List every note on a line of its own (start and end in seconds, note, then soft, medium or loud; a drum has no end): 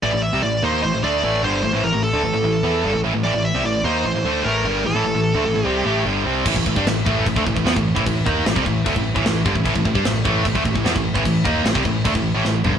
0.03 0.13 A1 medium
0.03 0.12 A2 medium
0.03 0.12 E3 medium
0.03 0.22 D5 medium
0.13 0.32 A1 medium
0.13 0.29 A2 medium
0.13 0.30 E3 medium
0.22 0.41 E5 medium
0.33 0.42 C2 medium
0.33 0.43 C3 medium
0.33 0.43 G3 medium
0.43 0.62 A1 medium
0.43 0.59 A2 medium
0.43 0.60 E3 medium
0.43 0.64 D5 medium
0.62 0.82 D#2 medium
0.62 0.82 D#3 medium
0.62 0.83 A#3 medium
0.62 0.83 D#4 medium
0.62 0.82 C5 medium
0.83 0.92 A1 medium
0.83 0.92 A2 medium
0.83 0.92 E3 medium
0.83 1.03 C5 medium
0.93 1.02 A1 medium
0.93 1.03 A2 medium
0.93 1.03 E3 medium
1.03 1.22 D2 medium
1.03 1.23 D3 medium
1.03 1.23 A3 medium
1.03 1.23 D4 medium
1.03 1.41 D5 medium
1.23 1.42 A1 medium
1.23 1.43 A2 medium
1.23 1.43 E3 medium
1.23 1.44 A3 medium
1.43 1.62 G1 medium
1.43 1.63 G2 medium
1.43 1.63 D3 medium
1.43 1.64 G3 loud
1.43 1.85 C5 medium
1.64 1.73 A1 medium
1.64 1.73 A2 medium
1.64 1.74 E3 medium
1.73 1.83 A1 medium
1.73 1.84 A2 medium
1.73 1.84 E3 medium
1.84 1.93 A1 medium
1.84 1.93 A2 medium
1.84 1.93 E3 medium
1.84 2.03 A#4 medium
1.94 2.12 A1 medium
1.94 2.10 A2 medium
1.94 2.10 E3 medium
2.04 3.00 A4 medium
2.14 2.23 D2 medium
2.14 2.24 D3 medium
2.14 2.24 A3 medium
2.23 2.33 A1 medium
2.23 2.33 A2 medium
2.23 2.33 E3 medium
2.33 2.43 A1 medium
2.33 2.43 A2 medium
2.33 2.44 E3 medium
2.43 2.62 A1 medium
2.43 2.60 A2 medium
2.43 2.61 E3 medium
2.64 2.83 E2 medium
2.64 2.83 E3 medium
2.64 2.84 B3 medium
2.64 2.84 E4 loud
2.84 2.94 G1 medium
2.84 2.94 G2 medium
2.84 2.94 D3 medium
2.94 3.04 A1 medium
2.94 3.03 A2 medium
2.94 3.04 E3 medium
3.04 3.14 A1 medium
3.04 3.13 A2 medium
3.04 3.14 E3 loud
3.14 3.24 A1 medium
3.14 3.23 A2 medium
3.14 3.24 E3 medium
3.24 3.34 A1 medium
3.24 3.33 A2 medium
3.24 3.34 E3 medium
3.24 3.45 D5 medium
3.34 3.53 A1 medium
3.34 3.51 A2 medium
3.34 3.51 E3 medium
3.45 3.65 E5 medium
3.55 3.64 C2 medium
3.55 3.64 C3 medium
3.55 3.65 G3 medium
3.64 3.83 A1 medium
3.64 3.81 A2 medium
3.64 3.81 E3 medium
3.64 3.85 D5 medium
3.84 4.03 D#2 medium
3.84 4.04 D#3 medium
3.84 4.05 A#3 medium
3.84 4.05 D#4 medium
3.84 4.47 C5 medium
4.04 4.14 A1 medium
4.04 4.14 A2 medium
4.04 4.14 E3 medium
4.14 4.24 A1 medium
4.14 4.25 A2 medium
4.14 4.25 E3 medium
4.25 4.43 D2 medium
4.25 4.44 D3 medium
4.25 4.45 A3 medium
4.25 4.45 D4 loud
4.44 4.63 A1 medium
4.44 4.64 A2 medium
4.44 4.65 E3 medium
4.44 4.65 A3 loud
4.44 4.86 A#4 medium
4.65 4.83 G1 medium
4.65 4.85 G2 medium
4.65 4.85 D3 medium
4.65 4.85 G3 loud
4.85 4.94 A1 medium
4.85 4.94 A2 medium
4.85 4.95 E3 medium
4.85 5.66 A4 medium
4.95 5.04 A1 medium
4.95 5.04 A2 medium
4.95 5.04 E3 loud
5.05 5.14 A1 medium
5.05 5.14 A2 medium
5.05 5.15 E3 medium
5.15 5.34 A1 medium
5.15 5.31 A2 medium
5.15 5.32 E3 medium
5.35 5.44 D2 medium
5.35 5.44 D3 medium
5.35 5.45 A3 medium
5.46 5.55 A1 medium
5.46 5.54 A2 medium
5.46 5.54 E3 medium
5.55 5.65 A1 medium
5.55 5.64 A2 medium
5.55 5.65 E3 medium
5.64 5.84 C2 medium
5.64 5.84 C3 medium
5.64 5.85 G3 medium
5.64 5.85 C4 medium
5.64 6.02 G4 medium
5.85 6.04 A1 medium
5.85 6.04 A2 medium
5.85 6.05 E3 medium
5.85 6.05 A3 medium
6.05 6.24 G1 medium
6.05 6.25 G2 medium
6.05 6.25 D3 medium
6.05 6.25 G3 medium
6.25 6.44 C2 medium
6.25 6.45 C3 medium
6.25 6.45 G3 medium
6.25 6.46 C4 medium
6.45 6.55 A1 medium
6.45 6.55 A2 medium
6.45 6.55 E3 medium
6.45 kick loud
6.45 crash loud
6.45 crash medium
6.56 6.65 A1 medium
6.56 6.65 A2 medium
6.56 6.65 E3 medium
6.56 kick medium
6.66 6.75 A1 medium
6.66 6.76 A2 medium
6.66 6.75 E3 medium
6.66 kick medium
6.76 6.84 G2 medium
6.76 6.85 G3 medium
6.76 6.85 D4 medium
6.76 kick medium
6.85 7.04 A1 medium
6.85 7.02 A2 medium
6.85 7.02 E3 medium
6.85 snare loud
6.85 crash medium
7.05 7.25 A1 medium
7.05 7.25 A2 loud
7.05 7.25 E3 loud
7.05 7.26 A3 loud
7.05 kick loud
7.26 7.35 A1 medium
7.26 7.35 A2 medium
7.26 7.36 E3 medium
7.26 kick medium
7.26 crash medium
7.36 7.45 D2 medium
7.36 7.45 D3 loud
7.36 7.46 A3 loud
7.36 kick medium
7.46 7.55 A1 medium
7.46 7.55 A2 medium
7.46 7.55 E3 medium
7.46 kick medium
7.56 7.65 A1 medium
7.56 7.65 A2 medium
7.56 7.64 E3 medium
7.56 kick medium
7.66 7.75 E2 medium
7.66 7.75 E3 medium
7.66 7.76 B3 loud
7.66 snare loud
7.66 crash medium
7.76 7.95 A1 medium
7.76 7.92 A2 medium
7.76 7.92 E3 medium
7.76 kick loud
7.95 8.05 A1 medium
7.95 8.04 A2 medium
7.95 8.04 E3 medium
7.95 kick loud
8.05 8.25 A1 medium
8.05 8.21 A2 medium
8.05 8.22 E3 medium
8.05 kick medium
8.05 crash medium
8.24 8.45 D#2 medium
8.24 8.44 D#3 loud
8.24 8.45 A#3 medium
8.24 8.45 D#4 loud
8.24 kick loud
8.45 8.55 A1 medium
8.45 8.54 A2 medium
8.45 8.55 E3 medium
8.45 snare loud
8.45 crash medium
8.55 8.65 C2 loud
8.55 8.64 C3 medium
8.55 8.64 G3 medium
8.55 kick loud
8.64 8.84 A1 medium
8.64 8.81 A2 medium
8.64 8.81 E3 medium
8.64 kick medium
8.84 8.95 D2 loud
8.84 8.94 D3 medium
8.84 8.95 A3 medium
8.84 kick loud
8.84 crash medium
8.94 9.14 A1 medium
8.94 9.11 A2 medium
8.94 9.11 E3 medium
8.94 kick medium
9.14 9.25 A1 medium
9.14 9.23 A2 medium
9.14 9.24 E3 medium
9.14 kick loud
9.24 9.44 A1 medium
9.24 9.41 A2 medium
9.24 9.41 E3 medium
9.24 snare loud
9.24 crash medium
9.44 9.55 G1 loud
9.44 9.54 G2 medium
9.44 9.54 D3 loud
9.44 kick loud
9.54 9.65 A1 medium
9.54 9.63 A2 medium
9.54 9.64 E3 medium
9.54 kick medium
9.64 9.75 A1 medium
9.64 9.73 A2 medium
9.64 9.73 E3 loud
9.64 kick loud
9.64 crash medium
9.74 9.85 A1 medium
9.74 9.84 A2 medium
9.74 9.84 E3 medium
9.74 kick medium
9.85 9.95 A1 medium
9.85 9.95 A2 medium
9.85 9.94 E3 medium
9.85 kick medium
9.94 10.04 G2 loud
9.94 10.04 G3 medium
9.94 10.04 D4 medium
9.94 kick medium
10.04 10.24 A1 medium
10.04 10.21 A2 medium
10.04 10.21 E3 medium
10.04 snare loud
10.04 crash medium
10.24 10.44 A1 loud
10.24 10.44 A2 medium
10.24 10.44 E3 loud
10.24 10.45 A3 medium
10.24 kick loud
10.45 10.55 A1 medium
10.45 10.54 A2 medium
10.45 10.55 E3 medium
10.45 kick medium
10.45 crash medium
10.55 10.64 D2 medium
10.55 10.64 D3 loud
10.55 10.64 A3 loud
10.55 kick medium
10.65 10.74 A1 medium
10.65 10.73 A2 medium
10.65 10.73 E3 medium
10.65 kick medium
10.74 10.84 A1 medium
10.74 10.84 A2 medium
10.74 10.83 E3 medium
10.74 kick medium
10.84 10.94 E2 medium
10.84 10.93 E3 medium
10.84 10.94 B3 loud
10.84 snare loud
10.84 crash medium
10.94 11.14 A1 medium
10.94 11.11 A2 medium
10.94 11.11 E3 medium
10.94 kick loud
11.14 11.25 A1 loud
11.14 11.23 A2 medium
11.14 11.24 E3 medium
11.14 kick loud
11.25 11.44 A1 medium
11.25 11.41 A2 medium
11.25 11.41 E3 medium
11.25 kick medium
11.25 crash medium
11.44 11.64 D#2 medium
11.44 11.64 D#3 loud
11.44 11.64 A#3 medium
11.44 11.65 D#4 loud
11.44 kick loud
11.65 11.74 A1 medium
11.65 11.74 A2 medium
11.65 11.75 E3 medium
11.65 snare loud
11.65 crash medium
11.74 11.84 C2 loud
11.74 11.84 C3 medium
11.74 11.84 G3 loud
11.74 kick loud
11.84 12.04 A1 medium
11.84 12.01 A2 medium
11.84 12.01 E3 medium
11.84 kick medium
12.04 12.14 D2 loud
12.04 12.14 D3 medium
12.04 12.14 A3 loud
12.04 kick loud
12.04 crash medium
12.15 12.34 A1 medium
12.15 12.31 A2 medium
12.15 12.31 E3 medium
12.15 kick medium
12.34 12.44 A1 medium
12.34 12.44 A2 medium
12.34 12.44 E3 loud
12.45 12.63 A1 medium
12.45 12.61 A2 medium
12.45 12.61 E3 medium
12.45 snare medium
12.65 12.74 G1 medium
12.65 12.74 G2 medium
12.65 12.74 D3 loud
12.65 floor tom medium
12.75 12.79 A1 medium
12.75 12.79 A2 medium
12.75 12.79 E3 medium